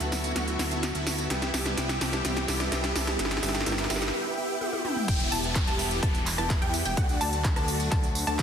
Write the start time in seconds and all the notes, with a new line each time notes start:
Already playing: D3 F#3 A3 F#4, riser
0.00 D2 B3 E4 F#4 E5 A5, closed hi-hat, tambourine
0.12 F#3 B3 E4 F#4, snare, open hi-hat, tambourine
0.24 closed hi-hat, tambourine
0.35 D2 F#3 B3 E4 F#4 E5 F#5, snare, closed hi-hat, tambourine
0.48 closed hi-hat, tambourine
0.59 D2 B3 E4 F#4 E5 A5, snare, open hi-hat, tambourine
0.71 F#3 B3 E4 F#4, closed hi-hat, tambourine
0.83 snare, closed hi-hat, tambourine
0.95 D2 B3 E4 F#4 E5 A5, closed hi-hat, tambourine
1.06 F#3 B3 E4 F#4, snare, open hi-hat, tambourine
1.18 closed hi-hat, tambourine
1.30 C2 E3 G3 B3 C4 E4 G4 E5 G5, snare, closed hi-hat, tambourine
1.42 snare, closed hi-hat, tambourine
1.54 C2 B3 E4 G4 E5 A5, snare, open hi-hat, tambourine
1.65 G3 B3 E4 G4, snare, closed hi-hat, tambourine
1.77 C2 G3 B3 E4 G4 E5 G5, snare, closed hi-hat, tambourine
1.89 snare, closed hi-hat, tambourine
2.01 C2 B3 E4 G4 E5 A5, snare, open hi-hat, tambourine
2.12 G3 B3 E4 G4, snare, closed hi-hat, tambourine
2.24 C2 G3 B3 E4 G4 E5 G5, snare, closed hi-hat, tambourine
2.37 snare, closed hi-hat, tambourine
2.48 C2 B3 E4 G4 E5 A5, snare, open hi-hat, tambourine
2.60 G3 B3 E4 G4, snare, closed hi-hat, tambourine
2.71 C2 G3 B3 E4 G4 E5 G5, snare, closed hi-hat, tambourine
2.84 snare, closed hi-hat, tambourine
2.96 C2 B3 E4 G4 E5 A5, snare, open hi-hat, tambourine
3.07 G3 B3 E4 G4, snare, closed hi-hat, tambourine
3.19 G1 D3 G3 B3 E4 G4 E5 G5, snare, closed hi-hat, tambourine
3.25 snare
3.31 snare, closed hi-hat, tambourine
3.37 snare
3.42 G1 G3 B3 E4 G4 E5 G5, snare, open hi-hat, tambourine
3.49 snare
3.55 snare, closed hi-hat, tambourine
3.61 snare
3.66 G1 G3 B3 E4 G4 E5 G5, snare, closed hi-hat, tambourine
3.72 snare
3.78 snare, closed hi-hat, tambourine
3.84 snare
3.90 G1 G3 B3 E4 G4 E5 G5, snare, open hi-hat, tambourine
3.96 snare
4.02 snare, closed hi-hat, tambourine
4.08 snare
4.14 B3 E4 G4 E5 G5
4.37 B3 E4 G4 E5 G5
4.61 B3 E4 G4 E5 G5, high tom
4.73 high tom
4.84 B3 E4 G4 E5 G5, mid tom
4.96 mid tom
5.08 E1 E3 G3 B3 E4 G4 E5 G5, kick, closed hi-hat, crash, tambourine, downlifter
5.20 closed hi-hat, tambourine
5.32 E1 B3 E4 G4 E5 A5, open hi-hat, tambourine
5.44 closed hi-hat, tambourine
5.55 kick, clap, closed hi-hat, tambourine
5.67 E1 B3 E4 G4 E5 A5, closed hi-hat, tambourine
5.79 open hi-hat, tambourine
5.91 closed hi-hat, tambourine
6.03 E1 B3 E4 G4 E5 A5, kick, closed hi-hat, tambourine
6.15 closed hi-hat, tambourine
6.26 clap, open hi-hat, tambourine
6.38 E1 B3 E4 G4 E5 A5, cross-stick, closed hi-hat, tambourine
6.50 kick, cross-stick, clap, closed hi-hat, tambourine
6.62 E2 B3 E4 G4 E5 G5, closed hi-hat
6.74 open hi-hat, tambourine
6.85 E1 B3 E4 G4 E5 G5, closed hi-hat, tambourine
6.97 D2 D3 F#3 A3 D4 F#4 D5 F#5, kick, closed hi-hat, tambourine
7.09 closed hi-hat, tambourine
7.21 D2 A3 D4 F#4 D5 A5, open hi-hat, tambourine
7.33 closed hi-hat, tambourine
7.44 kick, clap, closed hi-hat, tambourine
7.56 D2 A3 D4 F#4 D5 A5, cross-stick, closed hi-hat, tambourine
7.68 open hi-hat, tambourine
7.80 closed hi-hat, tambourine
7.92 D2 A5, kick, clap, closed hi-hat, tambourine
8.03 closed hi-hat, tambourine
8.15 open hi-hat, tambourine
8.27 D2 A3 D4 F#4 D5 A5, closed hi-hat, tambourine
8.39 kick, clap, closed hi-hat, tambourine